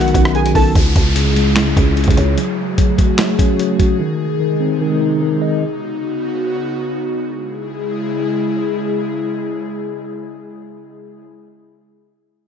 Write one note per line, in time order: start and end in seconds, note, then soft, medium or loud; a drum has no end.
0.00 0.12 B1 loud
0.00 0.74 C#3 medium
0.00 0.35 D#3 loud
0.00 0.74 B3 medium
0.00 0.75 B3 medium
0.00 0.72 D#4 medium
0.00 0.33 F#4 medium
0.00 0.74 F#4 medium
0.00 0.32 F#5 medium
0.00 closed hi-hat medium
0.08 closed hi-hat soft
0.14 0.53 B1 loud
0.14 0.75 C#4 medium
0.14 kick loud
0.14 closed hi-hat medium
0.25 cross-stick loud
0.35 0.75 D#3 medium
0.35 0.53 G#4 medium
0.35 0.52 G#5 medium
0.35 closed hi-hat soft
0.46 closed hi-hat medium
0.55 0.75 B1 loud
0.55 0.75 D#4 medium
0.55 0.73 A4 medium
0.55 0.72 A5 medium
0.55 kick medium
0.55 open hi-hat medium
0.75 0.95 C#2 loud
0.75 3.96 C#3 medium
0.75 1.15 C#3 medium
0.75 2.36 G#3 medium
0.75 2.36 E4 medium
0.75 2.36 G#4 medium
0.75 kick loud
0.75 closed hi-hat medium
0.75 downlifter medium
0.96 1.73 C#2 loud
0.96 kick medium
0.96 closed hi-hat medium
1.16 1.55 C#3 medium
1.16 closed hi-hat medium
1.36 2.37 G#3 medium
1.36 closed hi-hat medium
1.56 1.96 C#3 medium
1.56 finger snap loud
1.56 snare loud
1.56 closed hi-hat medium
1.77 2.06 C#2 loud
1.77 2.38 C#4 medium
1.77 kick medium
1.77 closed hi-hat medium
1.97 2.37 C#3 medium
1.97 closed hi-hat soft
2.04 2.17 C#2 loud
2.04 kick medium
2.04 closed hi-hat medium
2.11 closed hi-hat medium
2.17 2.37 C#2 loud
2.17 2.37 C#5 medium
2.17 closed hi-hat medium
2.37 2.77 F#3 medium
2.37 3.98 A3 medium
2.37 3.98 F#4 medium
2.37 5.59 G#4 medium
2.37 closed hi-hat medium
2.78 3.18 F#3 medium
2.78 kick medium
2.78 closed hi-hat medium
2.98 4.00 A3 medium
2.98 kick medium
2.98 closed hi-hat medium
3.18 3.58 F#3 medium
3.18 finger snap loud
3.18 snare loud
3.18 closed hi-hat medium
3.39 4.00 C#4 medium
3.39 kick medium
3.39 closed hi-hat medium
3.59 4.00 F#3 medium
3.59 closed hi-hat medium
3.79 3.99 F#4 medium
3.79 kick medium
3.79 closed hi-hat medium
4.00 5.60 C3 medium
4.00 4.39 D#3 loud
4.00 5.60 G#3 medium
4.00 7.21 D#4 medium
4.40 4.80 D#3 medium
4.60 5.62 C4 medium
4.81 5.20 D#3 loud
5.01 5.62 D#4 medium
5.21 5.62 D#3 medium
5.42 5.62 D#5 medium
5.62 7.22 C#3 medium
5.62 7.22 B3 medium
5.62 7.22 F#4 medium
7.24 11.24 C#3 medium
7.24 11.24 G#3 medium
7.24 11.24 E4 medium
7.24 11.24 G#4 medium